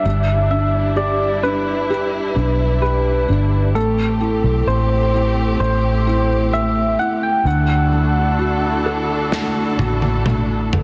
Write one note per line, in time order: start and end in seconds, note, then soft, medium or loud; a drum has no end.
0.00 3.71 G3 medium
0.00 3.72 D4 medium
0.00 0.50 E5 medium
0.05 2.33 G1 medium
0.05 3.72 G3 soft
0.05 3.72 E4 medium
0.50 1.42 D4 soft
0.50 0.94 E5 medium
0.96 1.89 G4 soft
0.96 1.45 D5 medium
1.43 2.34 D4 soft
1.43 2.81 B4 medium
1.90 2.80 G4 soft
2.36 3.25 B1 medium
2.36 3.27 D4 soft
2.81 3.72 G4 soft
2.81 3.71 B4 medium
3.28 3.75 G1 medium
3.28 3.74 D4 soft
3.74 4.40 A1 medium
3.74 7.41 A3 medium
3.74 4.66 A3 medium
3.74 7.41 C4 medium
3.74 7.42 G4 medium
3.74 4.69 A4 medium
4.21 5.12 E4 soft
4.44 4.66 B1 medium
4.66 5.56 A1 medium
4.66 5.58 A3 soft
4.66 5.59 C5 medium
5.14 6.05 E4 soft
5.60 6.95 A1 medium
5.60 6.51 A3 soft
5.60 6.55 C5 loud
6.07 6.97 E4 soft
6.53 7.43 A3 soft
6.53 7.01 E5 medium
6.99 7.44 E4 soft
6.99 7.25 F#5 medium
7.23 7.49 G5 medium
7.45 9.75 D2 medium
7.45 10.83 D3 medium
7.45 10.83 D4 medium
7.45 10.83 E4 medium
7.45 10.83 F#4 medium
7.45 10.83 A4 medium
7.45 10.27 F#5 loud
7.92 9.31 A3 soft
8.39 9.78 F#4 soft
8.86 10.70 A4 soft
9.32 10.25 A3 soft
9.32 snare medium
9.79 10.70 A1 medium
9.79 10.83 F#4 soft
9.79 high tom medium
10.02 high tom medium
10.26 10.83 A3 soft
10.26 mid tom medium
10.73 10.83 F#1 medium
10.73 10.83 A4 soft
10.73 floor tom medium